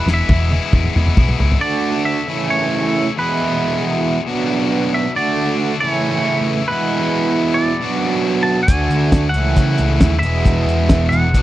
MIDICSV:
0, 0, Header, 1, 6, 480
1, 0, Start_track
1, 0, Tempo, 441826
1, 1753, Time_signature, 4, 2, 24, 8
1, 12411, End_track
2, 0, Start_track
2, 0, Title_t, "Clean electric guitar"
2, 0, Program_c, 0, 27
2, 149, Note_on_c, 0, 76, 90
2, 1027, Note_off_c, 0, 76, 0
2, 1751, Note_on_c, 0, 74, 87
2, 2198, Note_off_c, 0, 74, 0
2, 2230, Note_on_c, 0, 76, 101
2, 2715, Note_off_c, 0, 76, 0
2, 2720, Note_on_c, 0, 73, 89
2, 3393, Note_off_c, 0, 73, 0
2, 3463, Note_on_c, 0, 71, 69
2, 4366, Note_off_c, 0, 71, 0
2, 5371, Note_on_c, 0, 76, 81
2, 5588, Note_off_c, 0, 76, 0
2, 5609, Note_on_c, 0, 74, 87
2, 6302, Note_off_c, 0, 74, 0
2, 6306, Note_on_c, 0, 74, 85
2, 6426, Note_off_c, 0, 74, 0
2, 6426, Note_on_c, 0, 73, 85
2, 7255, Note_on_c, 0, 71, 80
2, 7301, Note_off_c, 0, 73, 0
2, 8184, Note_off_c, 0, 71, 0
2, 8194, Note_on_c, 0, 74, 80
2, 8878, Note_off_c, 0, 74, 0
2, 8878, Note_on_c, 0, 73, 80
2, 9152, Note_off_c, 0, 73, 0
2, 9157, Note_on_c, 0, 81, 87
2, 9369, Note_off_c, 0, 81, 0
2, 9374, Note_on_c, 0, 80, 97
2, 10092, Note_off_c, 0, 80, 0
2, 10097, Note_on_c, 0, 78, 87
2, 11068, Note_off_c, 0, 78, 0
2, 11072, Note_on_c, 0, 76, 89
2, 12012, Note_off_c, 0, 76, 0
2, 12049, Note_on_c, 0, 78, 90
2, 12411, Note_off_c, 0, 78, 0
2, 12411, End_track
3, 0, Start_track
3, 0, Title_t, "Overdriven electric guitar"
3, 0, Program_c, 1, 29
3, 3453, Note_on_c, 1, 64, 78
3, 4643, Note_off_c, 1, 64, 0
3, 11141, Note_on_c, 1, 64, 84
3, 12330, Note_off_c, 1, 64, 0
3, 12411, End_track
4, 0, Start_track
4, 0, Title_t, "Distorted electric guitar"
4, 0, Program_c, 2, 30
4, 84, Note_on_c, 2, 40, 83
4, 95, Note_on_c, 2, 47, 86
4, 98, Note_on_c, 2, 52, 88
4, 101, Note_on_c, 2, 56, 87
4, 109, Note_on_c, 2, 59, 92
4, 114, Note_on_c, 2, 64, 92
4, 311, Note_off_c, 2, 40, 0
4, 317, Note_off_c, 2, 47, 0
4, 322, Note_off_c, 2, 52, 0
4, 322, Note_off_c, 2, 56, 0
4, 324, Note_on_c, 2, 40, 101
4, 329, Note_off_c, 2, 59, 0
4, 330, Note_on_c, 2, 47, 95
4, 335, Note_on_c, 2, 52, 106
4, 335, Note_on_c, 2, 56, 97
4, 337, Note_off_c, 2, 64, 0
4, 342, Note_on_c, 2, 59, 114
4, 350, Note_on_c, 2, 64, 111
4, 542, Note_off_c, 2, 40, 0
4, 549, Note_off_c, 2, 47, 0
4, 555, Note_on_c, 2, 40, 80
4, 556, Note_off_c, 2, 56, 0
4, 557, Note_off_c, 2, 52, 0
4, 562, Note_on_c, 2, 47, 81
4, 565, Note_off_c, 2, 59, 0
4, 568, Note_off_c, 2, 64, 0
4, 569, Note_on_c, 2, 56, 83
4, 570, Note_on_c, 2, 52, 95
4, 578, Note_on_c, 2, 59, 83
4, 581, Note_on_c, 2, 64, 95
4, 773, Note_off_c, 2, 40, 0
4, 781, Note_off_c, 2, 47, 0
4, 785, Note_off_c, 2, 52, 0
4, 786, Note_on_c, 2, 40, 82
4, 793, Note_off_c, 2, 56, 0
4, 794, Note_on_c, 2, 47, 81
4, 796, Note_off_c, 2, 59, 0
4, 798, Note_on_c, 2, 52, 84
4, 801, Note_off_c, 2, 64, 0
4, 806, Note_on_c, 2, 56, 98
4, 809, Note_on_c, 2, 59, 90
4, 814, Note_on_c, 2, 64, 86
4, 1007, Note_off_c, 2, 40, 0
4, 1020, Note_on_c, 2, 40, 87
4, 1023, Note_off_c, 2, 47, 0
4, 1027, Note_off_c, 2, 52, 0
4, 1034, Note_off_c, 2, 56, 0
4, 1036, Note_on_c, 2, 47, 93
4, 1037, Note_off_c, 2, 59, 0
4, 1038, Note_off_c, 2, 64, 0
4, 1040, Note_on_c, 2, 52, 99
4, 1047, Note_on_c, 2, 56, 100
4, 1050, Note_on_c, 2, 59, 103
4, 1051, Note_on_c, 2, 64, 92
4, 1251, Note_off_c, 2, 40, 0
4, 1253, Note_off_c, 2, 47, 0
4, 1262, Note_off_c, 2, 52, 0
4, 1264, Note_on_c, 2, 40, 86
4, 1266, Note_on_c, 2, 47, 83
4, 1267, Note_off_c, 2, 56, 0
4, 1267, Note_off_c, 2, 59, 0
4, 1273, Note_off_c, 2, 64, 0
4, 1275, Note_on_c, 2, 52, 79
4, 1280, Note_on_c, 2, 56, 84
4, 1280, Note_on_c, 2, 59, 85
4, 1286, Note_on_c, 2, 64, 83
4, 1497, Note_off_c, 2, 40, 0
4, 1499, Note_off_c, 2, 47, 0
4, 1504, Note_off_c, 2, 52, 0
4, 1510, Note_off_c, 2, 56, 0
4, 1510, Note_on_c, 2, 40, 81
4, 1512, Note_on_c, 2, 47, 86
4, 1516, Note_off_c, 2, 59, 0
4, 1517, Note_on_c, 2, 52, 90
4, 1518, Note_off_c, 2, 64, 0
4, 1523, Note_on_c, 2, 56, 91
4, 1529, Note_on_c, 2, 59, 84
4, 1531, Note_on_c, 2, 64, 84
4, 1727, Note_off_c, 2, 52, 0
4, 1731, Note_on_c, 2, 50, 64
4, 1737, Note_off_c, 2, 40, 0
4, 1738, Note_off_c, 2, 47, 0
4, 1742, Note_off_c, 2, 56, 0
4, 1747, Note_off_c, 2, 59, 0
4, 1747, Note_on_c, 2, 57, 67
4, 1748, Note_off_c, 2, 64, 0
4, 1759, Note_on_c, 2, 62, 71
4, 1765, Note_on_c, 2, 66, 65
4, 2462, Note_off_c, 2, 50, 0
4, 2467, Note_on_c, 2, 49, 65
4, 2470, Note_off_c, 2, 57, 0
4, 2476, Note_off_c, 2, 62, 0
4, 2477, Note_on_c, 2, 52, 68
4, 2479, Note_off_c, 2, 66, 0
4, 2487, Note_on_c, 2, 57, 72
4, 2492, Note_on_c, 2, 61, 68
4, 2498, Note_on_c, 2, 64, 75
4, 3431, Note_off_c, 2, 49, 0
4, 3436, Note_off_c, 2, 52, 0
4, 3439, Note_on_c, 2, 40, 58
4, 3441, Note_off_c, 2, 57, 0
4, 3443, Note_off_c, 2, 61, 0
4, 3446, Note_off_c, 2, 64, 0
4, 3450, Note_on_c, 2, 47, 67
4, 3454, Note_on_c, 2, 52, 66
4, 3462, Note_on_c, 2, 56, 68
4, 3473, Note_on_c, 2, 59, 68
4, 3475, Note_on_c, 2, 68, 72
4, 4624, Note_off_c, 2, 47, 0
4, 4637, Note_on_c, 2, 47, 72
4, 4638, Note_off_c, 2, 40, 0
4, 4640, Note_off_c, 2, 52, 0
4, 4641, Note_off_c, 2, 59, 0
4, 4644, Note_on_c, 2, 54, 64
4, 4649, Note_off_c, 2, 56, 0
4, 4654, Note_on_c, 2, 59, 64
4, 4656, Note_off_c, 2, 68, 0
4, 4660, Note_on_c, 2, 62, 78
4, 4669, Note_on_c, 2, 66, 78
4, 5592, Note_off_c, 2, 54, 0
4, 5597, Note_off_c, 2, 47, 0
4, 5597, Note_on_c, 2, 50, 68
4, 5602, Note_off_c, 2, 62, 0
4, 5606, Note_off_c, 2, 59, 0
4, 5610, Note_on_c, 2, 57, 68
4, 5613, Note_off_c, 2, 66, 0
4, 5615, Note_on_c, 2, 62, 71
4, 5626, Note_on_c, 2, 66, 73
4, 6317, Note_off_c, 2, 50, 0
4, 6324, Note_off_c, 2, 57, 0
4, 6325, Note_on_c, 2, 49, 69
4, 6327, Note_off_c, 2, 62, 0
4, 6332, Note_off_c, 2, 66, 0
4, 6333, Note_on_c, 2, 52, 68
4, 6345, Note_on_c, 2, 57, 73
4, 6350, Note_on_c, 2, 61, 66
4, 6355, Note_on_c, 2, 64, 79
4, 7276, Note_on_c, 2, 40, 66
4, 7279, Note_off_c, 2, 52, 0
4, 7280, Note_off_c, 2, 49, 0
4, 7285, Note_on_c, 2, 47, 74
4, 7292, Note_off_c, 2, 57, 0
4, 7292, Note_on_c, 2, 52, 70
4, 7294, Note_off_c, 2, 64, 0
4, 7295, Note_off_c, 2, 61, 0
4, 7299, Note_on_c, 2, 56, 69
4, 7307, Note_on_c, 2, 64, 68
4, 7309, Note_on_c, 2, 59, 69
4, 8470, Note_off_c, 2, 47, 0
4, 8478, Note_off_c, 2, 40, 0
4, 8483, Note_on_c, 2, 47, 56
4, 8486, Note_off_c, 2, 52, 0
4, 8488, Note_off_c, 2, 59, 0
4, 8489, Note_off_c, 2, 56, 0
4, 8491, Note_on_c, 2, 54, 65
4, 8493, Note_off_c, 2, 64, 0
4, 8501, Note_on_c, 2, 59, 73
4, 8506, Note_on_c, 2, 62, 68
4, 8518, Note_on_c, 2, 66, 68
4, 9432, Note_off_c, 2, 54, 0
4, 9436, Note_on_c, 2, 50, 64
4, 9441, Note_off_c, 2, 47, 0
4, 9443, Note_off_c, 2, 59, 0
4, 9446, Note_off_c, 2, 62, 0
4, 9448, Note_on_c, 2, 57, 70
4, 9455, Note_off_c, 2, 66, 0
4, 9460, Note_on_c, 2, 62, 68
4, 9468, Note_on_c, 2, 66, 72
4, 10158, Note_off_c, 2, 50, 0
4, 10164, Note_off_c, 2, 57, 0
4, 10164, Note_on_c, 2, 49, 69
4, 10170, Note_off_c, 2, 62, 0
4, 10173, Note_on_c, 2, 52, 67
4, 10174, Note_off_c, 2, 66, 0
4, 10177, Note_on_c, 2, 57, 70
4, 10186, Note_on_c, 2, 61, 68
4, 10193, Note_on_c, 2, 64, 75
4, 11118, Note_on_c, 2, 40, 68
4, 11121, Note_off_c, 2, 49, 0
4, 11122, Note_off_c, 2, 52, 0
4, 11125, Note_on_c, 2, 47, 71
4, 11127, Note_off_c, 2, 57, 0
4, 11132, Note_on_c, 2, 56, 71
4, 11133, Note_off_c, 2, 61, 0
4, 11135, Note_on_c, 2, 52, 66
4, 11136, Note_off_c, 2, 64, 0
4, 11142, Note_on_c, 2, 59, 73
4, 11151, Note_on_c, 2, 68, 64
4, 12307, Note_off_c, 2, 47, 0
4, 12318, Note_off_c, 2, 40, 0
4, 12320, Note_on_c, 2, 47, 69
4, 12325, Note_off_c, 2, 52, 0
4, 12325, Note_off_c, 2, 56, 0
4, 12329, Note_on_c, 2, 54, 68
4, 12330, Note_off_c, 2, 59, 0
4, 12335, Note_off_c, 2, 68, 0
4, 12343, Note_on_c, 2, 59, 64
4, 12349, Note_on_c, 2, 62, 73
4, 12354, Note_on_c, 2, 66, 72
4, 12411, Note_off_c, 2, 47, 0
4, 12411, Note_off_c, 2, 54, 0
4, 12411, Note_off_c, 2, 59, 0
4, 12411, Note_off_c, 2, 62, 0
4, 12411, Note_off_c, 2, 66, 0
4, 12411, End_track
5, 0, Start_track
5, 0, Title_t, "Picked electric bass"
5, 0, Program_c, 3, 34
5, 70, Note_on_c, 3, 28, 93
5, 222, Note_off_c, 3, 28, 0
5, 312, Note_on_c, 3, 28, 93
5, 614, Note_off_c, 3, 28, 0
5, 794, Note_on_c, 3, 28, 94
5, 945, Note_off_c, 3, 28, 0
5, 1045, Note_on_c, 3, 28, 94
5, 1192, Note_off_c, 3, 28, 0
5, 1279, Note_on_c, 3, 35, 93
5, 1428, Note_off_c, 3, 35, 0
5, 1541, Note_on_c, 3, 37, 88
5, 1683, Note_off_c, 3, 37, 0
5, 9435, Note_on_c, 3, 38, 87
5, 9656, Note_off_c, 3, 38, 0
5, 9662, Note_on_c, 3, 38, 82
5, 9892, Note_off_c, 3, 38, 0
5, 9914, Note_on_c, 3, 38, 80
5, 10139, Note_off_c, 3, 38, 0
5, 10151, Note_on_c, 3, 37, 78
5, 10377, Note_off_c, 3, 37, 0
5, 10394, Note_on_c, 3, 49, 86
5, 10618, Note_off_c, 3, 49, 0
5, 10639, Note_on_c, 3, 37, 77
5, 10861, Note_off_c, 3, 37, 0
5, 10867, Note_on_c, 3, 39, 93
5, 11095, Note_off_c, 3, 39, 0
5, 11114, Note_on_c, 3, 28, 84
5, 11338, Note_off_c, 3, 28, 0
5, 11359, Note_on_c, 3, 28, 90
5, 11581, Note_off_c, 3, 28, 0
5, 11588, Note_on_c, 3, 40, 87
5, 11815, Note_off_c, 3, 40, 0
5, 11835, Note_on_c, 3, 28, 88
5, 12059, Note_off_c, 3, 28, 0
5, 12080, Note_on_c, 3, 28, 83
5, 12301, Note_off_c, 3, 28, 0
5, 12316, Note_on_c, 3, 35, 88
5, 12411, Note_off_c, 3, 35, 0
5, 12411, End_track
6, 0, Start_track
6, 0, Title_t, "Drums"
6, 82, Note_on_c, 9, 38, 67
6, 191, Note_off_c, 9, 38, 0
6, 315, Note_on_c, 9, 48, 80
6, 316, Note_on_c, 9, 36, 109
6, 424, Note_off_c, 9, 48, 0
6, 425, Note_off_c, 9, 36, 0
6, 561, Note_on_c, 9, 48, 70
6, 670, Note_off_c, 9, 48, 0
6, 794, Note_on_c, 9, 36, 111
6, 794, Note_on_c, 9, 47, 78
6, 903, Note_off_c, 9, 36, 0
6, 903, Note_off_c, 9, 47, 0
6, 915, Note_on_c, 9, 47, 69
6, 1024, Note_off_c, 9, 47, 0
6, 1043, Note_on_c, 9, 45, 97
6, 1152, Note_off_c, 9, 45, 0
6, 1161, Note_on_c, 9, 45, 80
6, 1270, Note_off_c, 9, 45, 0
6, 1273, Note_on_c, 9, 36, 103
6, 1277, Note_on_c, 9, 45, 96
6, 1382, Note_off_c, 9, 36, 0
6, 1385, Note_off_c, 9, 45, 0
6, 1397, Note_on_c, 9, 43, 84
6, 1506, Note_off_c, 9, 43, 0
6, 1521, Note_on_c, 9, 43, 101
6, 1629, Note_off_c, 9, 43, 0
6, 1648, Note_on_c, 9, 43, 93
6, 1756, Note_off_c, 9, 43, 0
6, 9431, Note_on_c, 9, 42, 97
6, 9433, Note_on_c, 9, 36, 110
6, 9539, Note_off_c, 9, 42, 0
6, 9542, Note_off_c, 9, 36, 0
6, 9674, Note_on_c, 9, 42, 62
6, 9783, Note_off_c, 9, 42, 0
6, 9909, Note_on_c, 9, 42, 92
6, 9911, Note_on_c, 9, 38, 109
6, 9913, Note_on_c, 9, 36, 109
6, 10018, Note_off_c, 9, 42, 0
6, 10019, Note_off_c, 9, 38, 0
6, 10022, Note_off_c, 9, 36, 0
6, 10146, Note_on_c, 9, 42, 61
6, 10254, Note_off_c, 9, 42, 0
6, 10389, Note_on_c, 9, 42, 86
6, 10395, Note_on_c, 9, 36, 106
6, 10498, Note_off_c, 9, 42, 0
6, 10503, Note_off_c, 9, 36, 0
6, 10624, Note_on_c, 9, 42, 69
6, 10732, Note_off_c, 9, 42, 0
6, 10870, Note_on_c, 9, 42, 83
6, 10871, Note_on_c, 9, 38, 100
6, 10875, Note_on_c, 9, 36, 99
6, 10978, Note_off_c, 9, 42, 0
6, 10979, Note_off_c, 9, 38, 0
6, 10983, Note_off_c, 9, 36, 0
6, 11113, Note_on_c, 9, 42, 59
6, 11222, Note_off_c, 9, 42, 0
6, 11358, Note_on_c, 9, 42, 78
6, 11360, Note_on_c, 9, 36, 105
6, 11466, Note_off_c, 9, 42, 0
6, 11469, Note_off_c, 9, 36, 0
6, 11610, Note_on_c, 9, 42, 56
6, 11718, Note_off_c, 9, 42, 0
6, 11834, Note_on_c, 9, 42, 80
6, 11835, Note_on_c, 9, 38, 103
6, 11839, Note_on_c, 9, 36, 105
6, 11943, Note_off_c, 9, 42, 0
6, 11944, Note_off_c, 9, 38, 0
6, 11948, Note_off_c, 9, 36, 0
6, 12084, Note_on_c, 9, 42, 52
6, 12192, Note_off_c, 9, 42, 0
6, 12324, Note_on_c, 9, 36, 98
6, 12327, Note_on_c, 9, 42, 79
6, 12411, Note_off_c, 9, 36, 0
6, 12411, Note_off_c, 9, 42, 0
6, 12411, End_track
0, 0, End_of_file